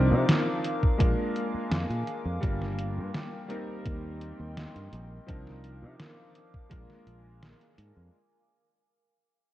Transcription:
Already playing: fingered electric bass C2, electric grand piano F3 C4 D4 D#4 A#4, ambient pad A#4 F5 D6
0.11 fingered electric bass C3
0.29 snare, closed hi-hat
0.64 closed hi-hat
0.83 kick
0.98 fingered electric bass A#1, electric grand piano G#3 A#3 D4 F4 A#4, ambient pad A#4 G#5 D6, kick, closed hi-hat
1.36 closed hi-hat
1.54 muted fingered electric bass stroke
1.71 fingered electric bass F2, snare, closed hi-hat
1.90 fingered electric bass A#2, closed hi-hat
2.07 closed hi-hat
2.25 fingered electric bass F2
2.41 fingered electric bass G1, electric grand piano G3 A#3 D4 F4 A#4, ambient pad G5, kick, closed hi-hat
2.62 snare
2.79 closed hi-hat
2.97 fingered electric bass G2
3.14 snare, closed hi-hat
3.48 electric grand piano G3 A#3 C4 D#4 A#4, ambient pad D#5 G5 C6, closed hi-hat
3.86 fingered electric bass D#2, kick, closed hi-hat
4.21 closed hi-hat
4.39 fingered electric bass D#2
4.57 snare, closed hi-hat
4.75 fingered electric bass G2, closed hi-hat
4.92 fingered electric bass A#1, closed hi-hat
5.26 fingered electric bass C2, electric grand piano F3 C4 D4 D#4 A#4, ambient pad A#4 F5 D6, kick, closed hi-hat
5.47 snare
5.64 closed hi-hat
5.82 fingered electric bass C3
6.00 snare, closed hi-hat
6.35 closed hi-hat
6.54 kick
6.69 fingered electric bass A#1, electric grand piano G#3 A#3 D4 F4 A#4, ambient pad A#4 G#5, kick, closed hi-hat
6.90 snare
7.07 fingered electric bass A#1, closed hi-hat
7.43 snare, closed hi-hat
7.61 closed hi-hat
7.78 fingered electric bass G#2, closed hi-hat
7.97 fingered electric bass F2

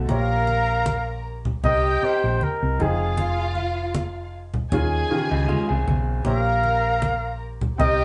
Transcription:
Already playing: grand piano A3 F#4 C5 D#5
0.09 fingered electric bass A#1, grand piano A#3 G4 C5 C#5, violin section A#4 A#5, flugelhorn F5, muted conga
0.47 muted conga
0.86 high conga
1.45 low conga
1.64 fingered electric bass C2, grand piano C4 G4 A#4 D#5, violin section G4 G5, flugelhorn D#5, muted conga, low conga
2.02 grand piano C4 G4 A#4 D#5, flugelhorn C5, muted fingered electric bass stroke
2.24 fingered electric bass A#1
2.41 flugelhorn A#4, high conga
2.63 fingered electric bass C2
2.79 fingered electric bass F1, grand piano F3 D#4 G#4 G5, violin section F4 F5, flugelhorn G#4, high conga
3.17 muted conga
3.55 muted conga
3.95 high conga
4.54 low conga
4.72 fingered electric bass D#2, grand piano D#3 C#4 F4 G#4, violin section G#4 G#5, muted conga, low conga
5.10 grand piano C#3 D#3 F4 G4, muted fingered electric bass stroke
5.18 grand piano G#4
5.31 fingered electric bass C#2, clean electric guitar G3 D#4
5.48 clean electric guitar G#3 F4, high conga
5.69 fingered electric bass C2, clean electric guitar C4 G#4
5.88 fingered electric bass B1, high conga
6.24 fingered electric bass A#1, grand piano A#3 G4 C5 C#5, violin section A#4 A#5, flugelhorn F5, muted conga
6.63 muted conga
7.02 high conga
7.61 low conga
7.78 fingered electric bass C2, grand piano C4 G4 A#4 D#5, violin section G4 G5, flugelhorn D#5, muted conga, low conga

